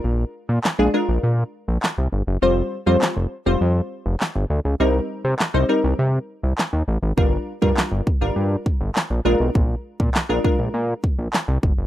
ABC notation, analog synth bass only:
X:1
M:4/4
L:1/16
Q:1/4=101
K:Bbmix
V:1 name="Analog synth bass" clef=bass
B,,,2 z B,, z B,,, z B,,, B,,2 z B,,, z C,, G,,, ^F,,, | F,,,2 z F,, z F,,, z F,,, F,,2 z F,,, z G,,, D,, _D,, | C,,2 z C, z C,, z C,, C,2 z C,, z E,, =A,,, _A,,, | G,,,2 z G,, z G,,, z G,,, G,,2 z G,,, z B,,, B,,, =B,,, |
B,,,2 z B,, z B,,, z B,,, B,,2 z B,,, z C,, G,,, ^F,,, |]